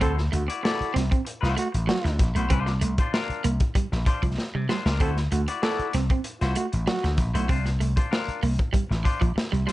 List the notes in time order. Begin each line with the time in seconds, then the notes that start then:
0.01 D2 C4 E4 F#4 A4 C5, kick, closed hi-hat
0.17 muted clean electric guitar stroke, snare
0.32 D2 A3 F#4, muted clean electric guitar stroke, closed hi-hat
0.48 E4 F#4 D5, muted clean electric guitar stroke, closed hi-hat
0.63 E4 F#4 A4 D5, muted clean electric guitar stroke, snare
0.81 muted slap bass stroke, closed hi-hat
0.94 C2 C4, muted clean electric guitar stroke, snare, closed hi-hat
1.10 C4, muted clean electric guitar stroke, kick, closed hi-hat
1.25 muted clean electric guitar stroke, closed hi-hat
1.41 C2 E4 F4 F#4 C5, snare
1.56 A3 F#4, muted clean electric guitar stroke, closed hi-hat
1.72 A1, muted clean electric guitar stroke, closed hi-hat
1.87 F#3 F#4, muted clean electric guitar stroke, snare
2.05 D2, muted clean electric guitar stroke, snare, closed hi-hat
2.19 A#1, kick, snare, closed hi-hat
2.35 B1 A3 E4 F#4 C5, closed hi-hat
2.50 C2 C4 D4 F4 C5, kick, closed hi-hat
2.66 muted clean electric guitar stroke, snare
2.81 C2 A3, muted clean electric guitar stroke, closed hi-hat
2.98 D4 F4 C5, kick, closed hi-hat
3.13 D4 F4 A#4, snare
3.29 muted slap bass stroke, closed hi-hat
3.44 C2 A#3, muted clean electric guitar stroke, closed hi-hat
3.60 muted clean electric guitar stroke, kick, closed hi-hat
3.75 G3, muted clean electric guitar stroke, kick, closed hi-hat
3.92 A#1, muted clean electric guitar stroke, snare
4.06 D4 F4 C5, muted clean electric guitar stroke, kick, closed hi-hat
4.22 C2 F3, kick, closed hi-hat
4.37 muted clean electric guitar stroke, snare
4.54 C3 G3, muted clean electric guitar stroke
4.69 G3 D4 F4 C5, snare
4.85 C#2 D4 F4 A#4, snare
5.00 D2 C4 E4 F#4 A4 C5, kick, closed hi-hat
5.17 muted clean electric guitar stroke, snare, closed hi-hat
5.31 D2 A3 F#4, muted clean electric guitar stroke, closed hi-hat
5.48 E4 F#4 D5, muted clean electric guitar stroke, closed hi-hat
5.62 E4 F#4 A4 D5, muted clean electric guitar stroke, snare
5.79 muted slap bass stroke, closed hi-hat
5.93 C2 C4, snare, closed hi-hat
6.10 C4, muted clean electric guitar stroke, kick, closed hi-hat
6.24 muted clean electric guitar stroke, closed hi-hat
6.41 C2 E4 F4 F#4 C5, snare, closed hi-hat
6.55 A3 F#4, muted clean electric guitar stroke, closed hi-hat
6.72 A1, muted clean electric guitar stroke, closed hi-hat
6.87 F#3 F#4, muted clean electric guitar stroke, snare
7.03 D2, muted clean electric guitar stroke, snare, closed hi-hat
7.17 A#1, kick, snare, closed hi-hat
7.34 B1 A3 E4 F#4 C5, closed hi-hat
7.49 C2 C4 D4 F4 C5, kick, closed hi-hat
7.66 muted clean electric guitar stroke, snare, closed hi-hat
7.80 C2 A3, muted clean electric guitar stroke, closed hi-hat
7.96 D4 F4 C5, kick, closed hi-hat
8.11 D4 F4 A#4, snare
8.28 muted slap bass stroke, closed hi-hat
8.43 C2 A#3, muted clean electric guitar stroke, open hi-hat
8.59 muted clean electric guitar stroke, kick, closed hi-hat
8.73 G3, muted clean electric guitar stroke, kick, closed hi-hat
8.90 A1, muted clean electric guitar stroke, snare
9.04 D4 F4 C5, muted clean electric guitar stroke, kick, closed hi-hat
9.21 A#1 F3, muted clean electric guitar stroke, kick, closed hi-hat
9.36 muted clean electric guitar stroke, muted slap bass stroke, snare
9.52 C2 G3, muted clean electric guitar stroke, closed hi-hat
9.66 G3 D4 F4 C5, snare, closed hi-hat